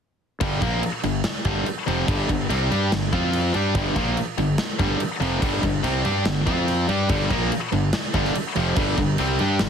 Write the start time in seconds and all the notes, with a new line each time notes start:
0.41 G1 G2 D3 G3, kick, crash
0.62 A#1 A#2 F3 A#3, kick, crash
0.83 muted distorted electric guitar stroke, muted fingered electric bass stroke, crash
1.03 G1 G2 D3, crash
1.24 snare, crash
1.45 G1 G2 D3 G3, kick, crash
1.66 muted distorted electric guitar stroke, muted fingered electric bass stroke, crash
1.86 F1 F2 C3 F3, crash
2.07 G1 G2 D3 G3, kick, crash
2.29 G1 G2 D3, kick, crash
2.50 C2 C3 G3 C4, crash
2.71 G2 G3 D4 G4, crash
2.92 G1 G2 D3, snare, crash
3.12 F2 F3 C4 F4, kick, crash
3.33 crash
3.54 G2 G3 D4 G4, crash
3.75 G1 G2 D3 G3, kick, crash
3.96 A#1 A#2 F3 A#3, kick, crash
4.17 muted distorted electric guitar stroke, muted fingered electric bass stroke, crash
4.38 G1 G2 D3, crash
4.58 snare, crash
4.79 G1 G2 D3 G3, kick, crash
5.00 muted fingered electric bass stroke, muted distorted electric guitar stroke, crash
5.20 F1 F2 C3 F3, crash
5.41 G1 G2 D3 G3, kick, crash
5.62 G1 G2 D3, kick, crash
5.83 C2 C3 G3 C4, crash
6.03 G2 G3 D4 G4, crash
6.25 G1 G2 D3, snare, crash
6.46 F2 F3 C4 F4, kick, crash
6.68 crash
6.88 G2 G3 D4 G4, crash
7.09 G1 G2 D3 G3, kick, crash
7.29 A#1 A#2 F3 A#3, kick, crash
7.51 muted distorted electric guitar stroke, muted fingered electric bass stroke, crash
7.72 G1 G2 D3, crash
7.93 snare, crash
8.14 G1 G2 D3 G3, kick, crash
8.25 snare
8.35 muted distorted electric guitar stroke, muted fingered electric bass stroke, crash
8.56 F1 F2 C3 F3, crash
8.76 G1 G2 D3 G3, kick, crash
8.97 G1 G2 D3, kick, crash
9.18 C2 C3 G3 C4, crash
9.39 G2 G3 D4 G4, crash
9.59 G1 G2 D3, snare, crash